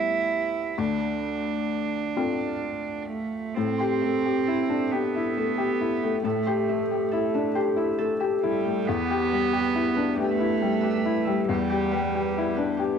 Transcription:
Already playing: G3 B3 E4 G4
0.78 D2 D4
2.17 A3 C4 F4
3.09 A3
3.56 A2 C4 A4
3.78 G4 C6
4.02 A3 E5
4.26 G4
4.47 E4 A4
4.70 D4 E5
4.92 B3 G4
5.15 E4 E5
5.37 A3 A4
5.58 G4 E5
5.81 E4
6.03 A3 G5
6.24 A2 A3 A4
6.46 G4 C5
6.69 A3 E5
6.92 G4
7.12 E4 A4
7.34 D4 E5
7.55 G4 C5
7.76 E4 E5
7.98 A3 A4
8.20 G4 E5
8.43 G3 E4
8.64 A3 G5
8.85 E2 B3
9.07 G4
9.29 G3 B4
9.53 G4
9.75 E4
9.94 D4 B4
10.15 A3 G4
10.20 G4
10.38 E4 B4
10.62 G3
10.81 G4 B4
11.06 E4
11.25 G3 E5
11.49 E2 G3
11.69 G4
11.91 G3 B4
12.15 G4
12.38 E4
12.56 D4 B4
12.77 G4

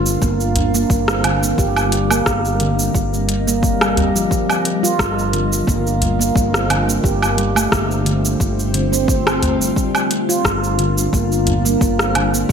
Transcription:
Already playing: G1 D3 G3 D4 F4 A#4
0.06 cabasa
0.22 G1 A#3, kick, cabasa
0.40 cabasa
0.56 closed hi-hat, udu
0.74 A#3, cabasa
0.90 G1 A#3, kick, cabasa
1.08 C4, cross-stick, cabasa
1.24 D3, closed hi-hat, low woodblock
1.43 A#3, cabasa
1.58 G1 C4 G4 D#5, kick, cabasa
1.76 cabasa, low woodblock
1.92 G3, closed hi-hat
2.11 A#3, cabasa, low woodblock
2.26 G1, kick, cross-stick, cabasa
2.45 cabasa
2.60 D3, closed hi-hat
2.79 cabasa
2.94 G1, kick, cabasa
3.14 cabasa
3.29 closed hi-hat
3.47 A#3, cabasa
3.63 G3, kick, cabasa
3.81 cross-stick, cabasa, low woodblock
3.97 G4, closed hi-hat, udu
4.15 F3, cabasa
4.31 G3 F4, kick, cabasa
4.50 cabasa, low woodblock
4.65 closed hi-hat
4.83 F4, cabasa
4.99 G1, kick, cross-stick, cabasa
5.19 cabasa
5.33 D3, closed hi-hat
5.53 cabasa
5.67 G1 A#3, kick, cabasa
5.87 cabasa
6.01 closed hi-hat, udu
6.19 A#3, cabasa
6.36 G1 A#3, kick, cabasa
6.53 C4, cross-stick, cabasa
6.70 D3, closed hi-hat, low woodblock
6.88 A#3, cabasa
7.03 G1 A3 C4 F4 G4 C5, kick, cabasa
7.23 cabasa, low woodblock
7.37 G3, closed hi-hat
7.56 A3, cabasa, low woodblock
7.72 G1, kick, cross-stick, cabasa
7.91 cabasa
8.06 D3, closed hi-hat
8.25 cabasa
8.40 G1, kick, cabasa
8.59 cabasa
8.74 D3, closed hi-hat
8.92 C4, cabasa
9.08 C4, kick, cabasa
9.27 cross-stick, cabasa, low woodblock
9.42 A3, closed hi-hat, udu
9.61 G3, cabasa
9.76 G3 D4 A#4, kick, cabasa
9.95 cabasa, low woodblock
10.11 closed hi-hat
10.29 F4, cabasa
10.45 G1, kick, cross-stick, cabasa
10.64 cabasa
10.79 D3, closed hi-hat
10.98 cabasa
11.13 G1 A#3, kick, cabasa
11.32 cabasa
11.47 closed hi-hat, udu
11.65 A#3, cabasa
11.81 G1 A#3, kick, cabasa
11.99 C4, cross-stick, cabasa
12.15 D3, closed hi-hat, low woodblock
12.33 A#3, cabasa
12.49 G4

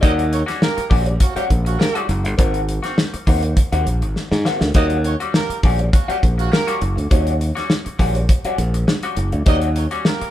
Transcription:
0.01 D#2 G3 C#4 F#4 G4 A#4 D#5, kick, closed hi-hat
0.19 closed hi-hat
0.31 G4 A#4 C#5, muted clean electric guitar stroke, closed hi-hat
0.46 G3 C#4 F#4, snare, closed hi-hat
0.61 A#3 G4 A#4, snare
0.77 muted clean electric guitar stroke, muted fingered electric bass stroke, closed hi-hat
0.90 A#1 G3 C#4 F#4, kick, open hi-hat
1.06 muted clean electric guitar stroke, closed hi-hat
1.20 A#3 C#4 F#4, muted clean electric guitar stroke, kick, closed hi-hat
1.36 G3 A#3 C#4 F#4 G4, muted fingered electric bass stroke, closed hi-hat
1.49 A#1, muted clean electric guitar stroke, kick, closed hi-hat
1.65 A#3 C#4 F#4, muted clean electric guitar stroke, closed hi-hat
1.79 A#3 G4 A#4, muted clean electric guitar stroke, snare
1.95 G3 C#4 F#4, closed hi-hat
2.09 F#1, muted clean electric guitar stroke, closed hi-hat
2.24 G1, muted clean electric guitar stroke, closed hi-hat
2.38 G#1 A#3 C4 F#4, kick, closed hi-hat
2.54 closed hi-hat
2.69 muted clean electric guitar stroke, closed hi-hat
2.83 A#3 C4 F#4, snare, closed hi-hat
2.98 snare
3.14 muted clean electric guitar stroke, muted fingered electric bass stroke, closed hi-hat
3.27 D#2 A#3 C4 F#4, kick, open hi-hat
3.43 muted clean electric guitar stroke, closed hi-hat
3.57 muted clean electric guitar stroke, kick, closed hi-hat
3.72 D#2 A#3 C4 F#4, closed hi-hat
3.86 A#1, muted clean electric guitar stroke, closed hi-hat
4.02 G#1, muted clean electric guitar stroke, closed hi-hat
4.16 snare
4.31 G#2, muted clean electric guitar stroke, snare
4.45 A#3 C4 F#4, snare
4.61 D2, muted clean electric guitar stroke, snare
4.74 D#2 G3 C#4 F#4 G4 A#4 D#5, kick, closed hi-hat
4.90 closed hi-hat
5.04 G4 A#4 C#5, muted clean electric guitar stroke, closed hi-hat
5.20 G3 C#4 F#4, closed hi-hat
5.34 A#3 G4 A#4, snare
5.50 muted fingered electric bass stroke, muted clean electric guitar stroke, closed hi-hat
5.63 A#1 G3 C#4 F#4, kick, open hi-hat
5.79 muted clean electric guitar stroke, closed hi-hat
5.93 A#3 C#4 F#4, muted clean electric guitar stroke, kick, closed hi-hat
6.08 G3 A#3 C#4 F#4 G4, muted fingered electric bass stroke, closed hi-hat
6.22 A#1, muted clean electric guitar stroke, kick, closed hi-hat
6.38 A#3 C#4 F#4, muted clean electric guitar stroke, closed hi-hat
6.52 A#3 G4 A#4, muted clean electric guitar stroke, snare
6.67 G3 C#4 F#4, closed hi-hat
6.82 F#1, muted clean electric guitar stroke, closed hi-hat
6.96 D2, muted clean electric guitar stroke, closed hi-hat
7.11 D#2 G3 C#4 F#4, kick, closed hi-hat
7.27 closed hi-hat
7.40 muted clean electric guitar stroke, closed hi-hat
7.55 G3 C#4 F#4, snare, closed hi-hat
7.70 snare
7.85 muted clean electric guitar stroke, muted fingered electric bass stroke, closed hi-hat
7.99 A#1 G3 C#4 F#4, kick, open hi-hat
8.15 muted clean electric guitar stroke, closed hi-hat
8.29 muted clean electric guitar stroke, kick, closed hi-hat
8.45 G3 C#4 F#4, muted fingered electric bass stroke, closed hi-hat
8.58 A#1, muted clean electric guitar stroke, closed hi-hat
8.74 muted clean electric guitar stroke, closed hi-hat
8.88 muted clean electric guitar stroke, snare
9.03 G3 C#4 F#4, closed hi-hat
9.17 F#1, muted clean electric guitar stroke, closed hi-hat
9.32 D2, muted clean electric guitar stroke, closed hi-hat
9.46 D#2 G3 C#4 F#4 G4 A#4 D#5, kick, closed hi-hat
9.62 closed hi-hat
9.76 G4 A#4 C#5, muted clean electric guitar stroke, closed hi-hat
9.91 G3 C#4 F#4, closed hi-hat
10.05 A#3 G4 A#4, snare
10.21 muted fingered electric bass stroke, muted clean electric guitar stroke, closed hi-hat

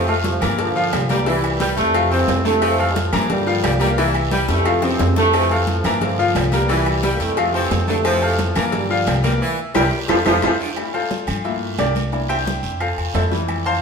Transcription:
Already playing: F2 F3
0.08 A3 F4 F5 F6, high conga, low agogo
0.24 A2 C3 F3, cowbell, high conga, low timbale, short guiro
0.41 G2 E3 A#3 A#4 A#5, cowbell, high conga, low conga, low agogo, short guiro, claves
0.59 A#2 D3 F3, cowbell, high conga, low agogo, long guiro
0.76 F3 F4 F5, high conga
0.93 C2 G3, cowbell, high conga, low timbale, low agogo, short guiro, claves
1.09 A#2 E3 G3 A#3 A#4 A#5, cowbell, high conga, low agogo, short guiro
1.26 E3 E4 E5, cowbell, low agogo, long guiro
1.44 high conga, low agogo, claves
1.60 G3 G4 G5, cowbell, high conga, low timbale, short guiro
1.77 F2 C3 E3 A3, cowbell, high conga, short guiro
1.94 F3 F4 F5, cowbell, high conga, low agogo, long guiro, claves
2.11 E3 F3 A3 C4 C5 C6, high conga, low agogo
2.28 F2, cowbell, high conga, low timbale, low agogo, short guiro
2.45 C3 D3 E3 A3 A4 A5, high conga, short guiro
2.62 F3, cowbell, high conga, low agogo, long guiro, claves
2.78 A3 A4 F5 F6, high conga, low agogo
2.95 A2 C3 F3, cowbell, high conga, low timbale, short guiro
3.13 G2 E3 A#3 A#4 A#5, cowbell, high conga, low conga, low agogo, short guiro, claves
3.29 A#2 D3 G3, cowbell, high conga, low conga, low agogo, long guiro
3.47 F3 F4 F5, high conga
3.63 C2 G3, cowbell, high conga, low timbale, low agogo, short guiro, claves
3.80 E3 G3 A#3 A#4 A#5, cowbell, high conga, low agogo, short guiro
3.97 E3 E4 E5, cowbell, high conga, low agogo, long guiro
4.15 high conga, low agogo, claves
4.31 G3 G4 G5, cowbell, high conga, low timbale, short guiro
4.48 F2 C3 E3 A3, cowbell, high bongo, high conga, short guiro
4.65 F3 F4 F5, cowbell, high conga, low agogo, long guiro, claves
4.82 E3 F3 A3 C4 C5 C6, low bongo, high conga, low agogo
4.99 F2, cowbell, low bongo, high conga, low timbale, low agogo, short guiro
5.16 C3 D3 E3 A3 A4 A5, low bongo, high conga, short guiro
5.33 F3, cowbell, low agogo, long guiro, claves
5.50 A3 A4 F5 F6, high conga, low agogo
5.67 A2 C3 F3, cowbell, high conga, low timbale, short guiro
5.84 G2 E3 A#3 A#4 A#5, cowbell, high conga, low conga, low agogo, short guiro, claves
6.01 A#2 D3 F3, cowbell, high conga, low conga, low agogo, long guiro
6.18 F3 F4 F5, high conga
6.35 C2 G3, cowbell, high conga, low timbale, low agogo, short guiro, claves
6.52 A#2 E3 G3 A#3 A#4 A#5, cowbell, high conga, low agogo, short guiro
6.69 E3 E4 E5, cowbell, high conga, low agogo, long guiro
6.86 high conga, low agogo, claves
7.03 G3 G4 G5, cowbell, high conga, low timbale, short guiro
7.13 A#3
7.20 F2 C3 E3 A3, cowbell, high conga, short guiro
7.37 F3 F4 F5, cowbell, high conga, low agogo, long guiro, claves
7.54 E3 F3 A3 C4 C5 C6, high conga, low agogo
7.71 F2, cowbell, high conga, low timbale, low agogo, short guiro
7.88 C3 D3 E3 A3 A4 A5, high conga, short guiro
8.05 F3, cowbell, high conga, low agogo, long guiro, claves
8.22 A3 A4 F5 F6, high conga, low agogo
8.39 A2 C3 F3, cowbell, high conga, low timbale, short guiro
8.55 G2 E3 A#3 A#4 A#5, cowbell, high conga, low conga, low agogo, short guiro, claves
8.72 A#2 D3 G3, cowbell, high conga, low conga, low agogo, long guiro
8.90 F3 F4 F5, high conga
9.07 C2 G3, cowbell, high conga, low timbale, low agogo, short guiro, claves
9.23 E3 G3 A#3 A#4 A#5, cowbell, high conga, low agogo, short guiro
9.41 E3
9.74 C2 C3 E3 G3 G4 A#4 C5, cowbell, high conga, high timbale, long guiro, claves
10.08 F2 C3 E3 F3 F4 A4 C5, cowbell, high conga, high timbale, long guiro, claves
10.25 F2 C3 E3 F3 F4 A4 C5, cowbell, high conga, high timbale, long guiro, claves
10.42 F2 C3 E3 F3 F4 A4 C5, cowbell, high conga, high timbale, long guiro, claves
10.60 D3
10.77 G3 A3 E4, high conga, low agogo, long guiro, claves
10.94 F4 A4 C5 F5, high conga, low agogo
11.11 high conga, low timbale, short guiro
11.27 G2, high conga, low conga, low agogo, short guiro, claves
11.44 A3 A#3 E4 F4 E5, high conga, low agogo, long guiro
11.62 high conga
11.78 C2 D4 G4 A#4 D5, high conga, low timbale, low agogo, short guiro, claves
11.95 high conga, low agogo, short guiro
12.12 A#3 D4 E4, high conga, low agogo, long guiro
12.29 G4 C5 E5 G5, high conga, low agogo, claves
12.46 high conga, low timbale, short guiro
12.63 F2, high conga, short guiro
12.80 F4 A4 C5 F5, high conga, low agogo, long guiro, claves
12.97 E2, high conga, low agogo
13.14 F2 E4 A4 C5 E5, high conga, low timbale, low agogo, short guiro
13.31 E3 G3 A3, high conga, short guiro
13.48 high conga, low agogo, long guiro, claves
13.65 C5 F5 A5 C6, high conga, low agogo

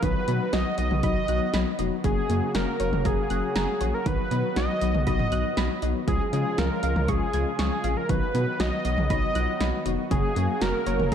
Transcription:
0.03 B1 D#3 F#3 B3 D#4 F#4 B4, kick, closed hi-hat
0.28 B2 F#3 B3 D#4 F#4, closed hi-hat
0.53 B1 F#3 B3 D#4 F#4 D#5, snare, closed hi-hat
0.78 B1 F#3 B3 D#4 F#4 D#5, closed hi-hat
0.91 B1, mid tom
1.03 B1 F#3 B3 D#4 F#4 D#5 B5, kick, closed hi-hat
1.28 B1 F#3 B3 D#4 F#4 F#6, closed hi-hat
1.54 B1 F#3 B3 D#4 F#4 B5, snare, closed hi-hat
1.79 F1 F#3 B3 D#4 F#4 D#5, closed hi-hat
2.04 F#1 C#3 F#3 A#3 C#4 F#4 G#4, kick, closed hi-hat
2.29 F#2 F#3 A#3 C#4 F#4, closed hi-hat
2.54 F#1 F#3 A#3 C#4 F#4 A#4, snare, closed hi-hat
2.80 F#1 F#3 A#3 C#4 F#4 C#5, closed hi-hat
2.93 F#1, mid tom
3.05 F#1 F#3 A#3 C#4 F#4 G#4 A#5, kick, closed hi-hat
3.30 F#1 F#3 A#3 C#4 F#4 F#6, closed hi-hat
3.55 F#1 F#3 A#3 C#4 F#4 G#4 A#5, snare, closed hi-hat
3.81 A#1 F#3 A#3 C#4 F#4 C#5, closed hi-hat
3.94 A#4
4.06 B1 D#3 F#3 B3 D#4 F#4 B4, kick, closed hi-hat
4.31 B2 F#3 B3 D#4 F#4, closed hi-hat
4.56 B1 F#3 B3 D#4 F#4 D#5, snare, closed hi-hat
4.81 B1 F#3 B3 D#4 F#4 D#5, closed hi-hat
4.94 B1, mid tom
5.07 B1 F#3 B3 D#4 F#4 D#5 B5, kick, closed hi-hat
5.19 mid tom
5.32 B1 F#3 B3 D#4 F#4 F#6, closed hi-hat
5.57 B1 F#3 B3 D#4 F#4 B5, snare, closed hi-hat
5.82 B1 F#3 B3 D#4 F#4 D#5, closed hi-hat
6.08 C#2 C#3 F3 G#3 C#4 F4 G#4, kick, closed hi-hat
6.33 C#3 F3 G#3 C#4 F4 G#4, closed hi-hat
6.58 C#2 F3 G#3 C#4 F4 G#4 A#4, snare, closed hi-hat
6.83 C#2 F3 G#3 C#4 F4 F5, closed hi-hat
6.96 C#2, mid tom
7.08 C#2 F3 G#3 C#4 F4 G#4 C#6, kick, closed hi-hat
7.33 C#2 F3 G#3 C#4 F4 G#6, closed hi-hat
7.59 C#2 F3 G#3 C#4 F4 G#4 C#6, snare, closed hi-hat
7.84 A#1 F3 G#3 C#4 F4 F5, closed hi-hat
7.97 A#4
8.09 B1 D#3 F#3 B3 D#4 F#4 B4, kick, closed hi-hat
8.35 B2 F#3 B3 D#4 F#4, closed hi-hat
8.60 B1 F#3 B3 D#4 F#4 D#5, snare, closed hi-hat
8.85 B1 F#3 B3 D#4 F#4 D#5, closed hi-hat
8.98 B1, mid tom
9.10 B1 F#3 B3 D#4 F#4 D#5 B5, kick, closed hi-hat
9.35 B1 F#3 B3 D#4 F4 F#6, closed hi-hat
9.60 B1 F#3 B3 D#4 F#4 B5, snare, closed hi-hat
9.86 F1 F#3 B3 D#4 F#4 D#5, closed hi-hat
10.11 F#1 C#3 F#3 A#3 C#4 F#4 G#4, kick, closed hi-hat
10.36 F#2 F#3 A#3 C#4 F#4, closed hi-hat
10.61 F#1 F#3 A#3 C#4 F#4 A#4, snare, closed hi-hat
10.86 F#1 F#3 A#3 C#4 F#4 C#5, closed hi-hat
10.99 F#1, mid tom
11.12 A#3 C#4 A#5

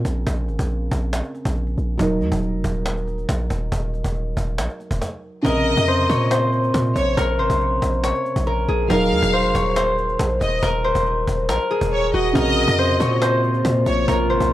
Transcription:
Already playing: C#3 C4 F#4 G#4 A#4
0.05 A#1, cajon bass, cajon slap
0.27 A#1, cajon bass
0.48 G#1, cajon slap
0.59 A#1, cajon bass
0.70 cajon slap
0.91 A#1, cajon bass
1.02 cajon slap
1.13 cajon slap
1.24 cajon slap
1.35 cajon slap
1.45 A#1, cajon bass
1.56 cajon slap
1.67 cajon slap
1.78 A#1, cajon slap
1.97 D#1 F#3 D#4, cajon bass
2.02 A#4
2.21 D#2, cajon slap
2.32 D#1, cajon bass
2.43 cajon slap
2.53 F1
2.64 D#1, cajon bass
2.75 cajon slap
2.86 cajon slap
2.97 cajon slap
3.07 cajon slap
3.18 cajon slap
3.29 A#1, cajon bass, cajon slap
3.40 cajon slap
3.50 D#1, cajon bass, cajon slap
3.72 D#1, cajon bass
3.94 cajon slap
4.04 D#1, cajon bass
4.15 cajon slap
4.37 D#1, cajon bass
4.48 cajon slap
4.58 A#1, cajon slap
4.69 cajon slap
4.80 cajon slap
4.91 D#1, cajon bass
5.02 cajon bass, cajon slap
5.42 A#1 C3 C#3 A#4 D#5, cajon bass
5.47 A#4
5.66 cajon slap
5.77 F2, cajon bass
5.88 C5, cajon slap
6.09 A#2 C#5, cajon bass
6.20 cajon slap
6.31 C5, cajon slap
6.42 cajon slap
6.53 cajon slap
6.63 cajon slap
6.74 A#2, cajon bass, cajon slap
6.85 cajon slap
6.96 A#1 C#5, cajon bass, cajon slap
7.17 A#1 A#4, cajon bass
7.39 G#1 C5, cajon slap
7.50 A#1, cajon bass
7.61 cajon slap
7.82 A#1, cajon bass
7.93 cajon slap
8.04 C#5, cajon slap
8.15 cajon slap
8.25 cajon slap
8.36 A#1, cajon bass
8.47 A#4, cajon slap
8.58 cajon slap
8.68 A#1 G#4, cajon slap
8.88 D#1 F#3 D#4 A#4 F5, cajon bass
8.93 A#4
9.12 D#2, cajon slap
9.22 D#1, cajon bass
9.33 C5, cajon slap
9.44 F1
9.55 D#1 C#5, cajon bass
9.65 cajon slap
9.76 C5, cajon slap
9.87 cajon slap
9.98 cajon slap
10.09 cajon slap
10.19 A#1, cajon bass, cajon slap
10.30 cajon slap
10.41 D#1 D#5, cajon bass, cajon slap
10.63 D#1 A#4, cajon bass
10.84 C5, cajon slap
10.95 D#1, cajon bass
11.06 cajon slap
11.27 D#1, cajon bass
11.38 cajon slap
11.49 A#1 A#4, cajon slap
11.60 cajon slap
11.71 G#4, cajon slap
11.81 D#1, cajon bass
11.92 C#5, cajon slap
12.03 cajon slap
12.14 D#1 F#4 D#5, cajon slap
12.33 A#1 A#2 C3 C#3 A#3 F4 A#4 D#5, cajon bass
12.38 A#4
12.57 cajon slap
12.68 F2, cajon bass
12.79 C5, cajon slap
13.00 A#2 C#5, cajon bass
13.22 C5, cajon slap
13.33 cajon slap
13.43 cajon slap
13.54 cajon slap
13.65 A#2, cajon bass, cajon slap
13.76 cajon slap
13.86 A#1 C#5, cajon bass, cajon slap
14.08 A#1 A#4, cajon bass
14.30 G#1 C5, cajon slap
14.40 A#1, cajon bass

